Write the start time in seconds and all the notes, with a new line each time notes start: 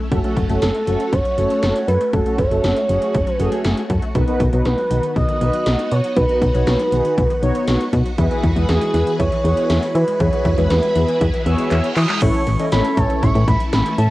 Already playing: A3
0.00 A3
0.12 F#1 F#3 A3 C#4 F#4 A4, kick, closed hi-hat
0.24 F#3 A3 C#4 F#4 A4, closed hi-hat
0.37 F#1 F#3, kick, closed hi-hat
0.49 F#1 A3 C#4 F#4 A4, closed hi-hat
0.62 F#1 A4, snare, closed hi-hat
0.75 A3, closed hi-hat
0.87 F#1 F#3 A3 C#4 F#4 A4, closed hi-hat
1.00 F#3, closed hi-hat
1.12 F#1 F#3 C#5, kick, closed hi-hat
1.25 F#3, closed hi-hat
1.38 F#1 F#3 A3 C#4 F#4 A4, closed hi-hat
1.50 A3, closed hi-hat
1.63 F#1 A4, snare, closed hi-hat
1.76 closed hi-hat
1.88 F#2 A4 B4, closed hi-hat
2.01 A3, closed hi-hat
2.13 F#1 F#3 A3 C#4 F#4 A4, kick, closed hi-hat
2.26 F#3 A3 C#4 F#4 A4, closed hi-hat
2.38 F#1 F#3 C#5, kick, closed hi-hat
2.51 F#1 A3 C#4 F#4 A4, closed hi-hat
2.64 F#1 A4, snare, closed hi-hat
2.76 A3, closed hi-hat
2.89 F#1 F#3 A3 C#4 F#4 G#4, closed hi-hat
3.02 F#3, closed hi-hat
3.14 F#1 F#3, kick, closed hi-hat
3.27 F#3, closed hi-hat
3.37 F#1 F#3 A3 C#4 F#4 G#4 B4, closed hi-hat
3.52 A3, closed hi-hat
3.64 F#1 A4, snare, closed hi-hat
3.77 closed hi-hat
3.90 F#2 A4, kick, closed hi-hat
4.02 A3, closed hi-hat
4.15 B1 D#3 B3 D#4 F#4 B4, kick, closed hi-hat
4.28 D#3 B3 D#4 F#4 B4, closed hi-hat
4.40 B1 D#3, kick, closed hi-hat
4.53 B1 F#3 B3 D#4 F#4 B4, closed hi-hat
4.65 B1 F#4 B4, snare, closed hi-hat
4.78 F#3, closed hi-hat
4.90 B1 D#3 B3 D#4 F#4 B4, closed hi-hat
5.03 D#3, closed hi-hat
5.16 B1 D#3 D#5, kick, closed hi-hat
5.28 D#3, closed hi-hat
5.41 B1 D#3 B3 D#4 F#4 B4, closed hi-hat
5.53 F#3, closed hi-hat
5.66 B1 F#4, snare, closed hi-hat
5.79 closed hi-hat
5.91 B2 F#4 C#5, closed hi-hat
6.04 F#3, closed hi-hat
6.17 B1 D#3 B3 D#4 F#4 B4, kick, closed hi-hat
6.29 D#3 B3 D#4 F#4 B4, closed hi-hat
6.42 B1 D#3 B4, kick, closed hi-hat
6.54 B1 F#3 B3 D#4 F#4 C#5, closed hi-hat
6.67 B1 F#4, snare, closed hi-hat
6.79 F#3, closed hi-hat
6.92 B1 D#3 B3 D#4 F#4 G#4, closed hi-hat
7.05 D#3, closed hi-hat
7.18 B1 D#3, kick, closed hi-hat
7.30 D#3, closed hi-hat
7.43 B1 D#3 B3 D#4 F#4 C#5, closed hi-hat
7.55 F#3, closed hi-hat
7.68 B1 F#4, snare, closed hi-hat
7.81 closed hi-hat
7.93 B2 F#4, kick, closed hi-hat
8.06 F#3, closed hi-hat
8.18 E2 E3 B3 E4 G#4 B4, kick, closed hi-hat
8.31 E3 B3 E4 G#4 B4, closed hi-hat
8.43 E2 E3, kick, closed hi-hat
8.56 E2 G#3 B3 E4 G#4 B4, closed hi-hat
8.68 E2 F#4 G#4, snare, closed hi-hat
8.81 G#3, closed hi-hat
8.94 E2 E3 B3 E4 G#4 B4, closed hi-hat
9.07 E3, closed hi-hat
9.19 E2 E3 C#5, kick, closed hi-hat
9.32 E3, closed hi-hat
9.44 E2 E3 B3 E4 G#4 C#5, closed hi-hat
9.57 G#3, closed hi-hat
9.70 E2 F#4, snare, closed hi-hat
9.82 closed hi-hat
9.94 E3 F#4 B4, closed hi-hat
10.07 G#3, closed hi-hat
10.19 E2 E3 B3 E4 G#4 B4 C#5, kick, closed hi-hat
10.33 E3 B3 E4 G#4 B4, closed hi-hat
10.45 E2 E3, kick, closed hi-hat
10.58 E2 G#3 B3 E4 G#4 B4, closed hi-hat
10.70 E2 F#4 B4, snare, closed hi-hat
10.83 G#3, closed hi-hat
10.96 E2 E3 B3 E4 G#4 B4, closed hi-hat
11.08 E3, closed hi-hat
11.21 E2 E3, kick, closed hi-hat, reverse cymbal
11.34 E3, closed hi-hat
11.46 E2 E3 B3 E4 G#4 C#5 E6, closed hi-hat
11.58 G#3, closed hi-hat
11.71 E2 F#4 E6, clap, closed hi-hat
11.84 closed hi-hat
11.96 E3 F#4 D#6, clap, open hi-hat
12.09 G#3, clap, closed hi-hat
12.21 A1 E3 A3 C#4 E4 A4 C#5 C#6, kick, closed hi-hat, crash
12.34 closed hi-hat
12.47 A1 E3, closed hi-hat
12.59 E3 C#4 E4 A4 D#5, closed hi-hat
12.72 A1 E3 C#4 E4 A4 C#5 B5, snare, closed hi-hat
12.85 closed hi-hat
12.97 A1 E3 A5, kick, closed hi-hat
13.10 E3, closed hi-hat
13.23 A1 C#6, kick, closed hi-hat
13.35 A2 E3, closed hi-hat
13.48 A1 E3 B5, kick, closed hi-hat
13.60 closed hi-hat
13.73 A1 E3 B5, snare, closed hi-hat
13.86 E3, closed hi-hat
13.98 A2 E5 A5, closed hi-hat